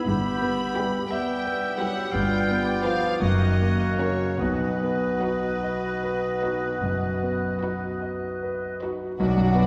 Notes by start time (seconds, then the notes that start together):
Already playing: G#2 E4
0.06 G1 G2 B3 G4 E5 B5 G6
0.41 B3
0.75 G3 E4 G4 B4
1.09 G3 B3 G4 E5 G5 G6
1.45 B4
1.78 F#3 G3 E4 G4 B4 F#5
2.11 G1 G2 G3 B3 F4 F5 G5 G6
2.51 B3
2.65 D5
2.83 F3 F4 G4 B4 F5
3.20 F#1 F#2 D#3 A#3 F#4 C#5 D#5 F#6
3.61 A#3
3.98 C#3 F#3 C#4 F#4 A#4 C#5
4.38 B1 B2 B3 F#4 B4 D#5 F#6
4.82 B3
5.20 F#3 D#4 F#4 B4
5.63 D#5
6.03 B4
6.42 F#3 D#4 F#4 B4
6.82 F#1 F#2
7.23 B3
7.61 F#3 D#4 F#4 B4
8.01 D#5
8.43 B4
8.82 F#3 D#4 F#4 B4
9.18 B1 B2 F#3 D4 F#4 D5 F#5 D6
9.37 F#2
9.55 B3